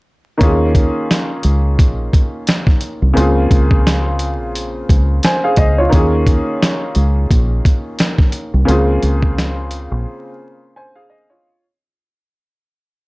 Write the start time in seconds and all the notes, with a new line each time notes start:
0.38 D#2 D#3 A#3 C#4, kick, closed hi-hat
0.42 F4 G#4
0.75 kick, closed hi-hat
1.11 snare, closed hi-hat
1.43 C#2, closed hi-hat
1.79 A#1, kick, closed hi-hat
2.13 kick, closed hi-hat
2.47 snare, closed hi-hat
2.67 kick, snare
2.81 closed hi-hat
3.02 C2
3.13 C#2 C#3 A#3 C4, closed hi-hat
3.18 F4 G#4
3.51 C#2, kick, closed hi-hat
3.71 kick
3.87 snare, closed hi-hat
4.19 closed hi-hat
4.40 A#1
4.55 closed hi-hat
4.89 C#2, kick, closed hi-hat
5.23 C5 G#5, snare, closed hi-hat
5.44 G#4 F5
5.56 C#2 D#5, kick, closed hi-hat
5.78 F4 C#5
5.89 D#2 D#3 A#3 C#4, kick, closed hi-hat
5.94 F4 G#4
6.26 kick, closed hi-hat
6.62 snare, closed hi-hat
6.95 C#2, closed hi-hat
7.31 A#1, kick, closed hi-hat
7.65 kick, closed hi-hat
7.99 snare, closed hi-hat
8.18 kick, snare
8.32 closed hi-hat
8.54 C2
8.65 C#2 C#3 A#3 C4, closed hi-hat
8.69 F4 G#4
9.03 C#2, closed hi-hat
9.23 kick
9.38 snare, closed hi-hat
9.71 closed hi-hat
9.92 A#1
10.76 C5 G#5
10.96 G#4 F5
11.10 D#5
11.30 F4 C#5